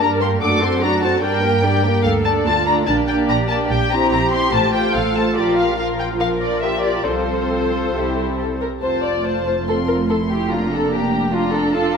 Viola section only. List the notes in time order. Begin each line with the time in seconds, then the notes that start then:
0.00 G3 D4
0.21 A#3
0.42 A3 D4
0.62 C4 F#4
0.82 A3 D4
1.03 C4 F#4
1.23 G3 D4
1.44 A#3
1.64 G3 D4
1.84 A#3
2.25 A3 D4
2.67 A3 D4
2.87 A#3 D4
3.08 A#3 D4
3.49 A#3 D4
3.91 C4 E4
4.32 C4 E4
4.52 A3 F4
4.73 A3 F4
5.15 A3 F4
5.36 F3 F4
5.77 F3 F4
6.20 F3 F4
7.06 F3 C4
7.95 G3 C4
8.82 C4 F4
9.25 A3
9.68 F4
10.09 E4
10.50 A#3 D4
11.33 D4
11.73 D4 F4